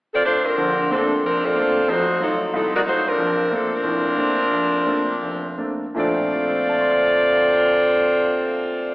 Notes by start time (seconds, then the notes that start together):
0.14 C4 F4 A4 D5
0.26 A3 D4 F4 C5
0.46 F3 C4 D4 A#4
0.58 A#1 D3
0.90 F3 A3 A#3 C4 D4 A4
1.23 F1 F3 C4 D4 A#4
1.44 C4 F4 A4 D5
1.55 A3 A#3 C4 D4
1.88 F2 A3 D#4 F#4 C5
2.20 F#3 A3 C4 D#4 F4 A4
2.54 C2 F#3 C4 D#4 A4
2.76 A#3 D#4 F#4 D5
2.86 F#3 A3 D#4 F4 F#4 C5
3.09 F3 C4 D4 A#4
3.18 A#1
3.50 A3 A#3 C4 D4
3.55 F3 C4 D4 A4
3.74 F3 C4 D4 A#4
3.83 F1 A2
4.17 A3 A#3 C4 D4
4.51 F1
4.86 A3 A#3 C4 D4
5.23 F1
5.58 A3 A#3 C4 D4
5.94 A#2 F3 A3 C4 D4 F4 A4 D5
6.35 F4
6.42 A4
6.51 C5
6.60 F5
6.69 A5
6.81 C6
6.92 F6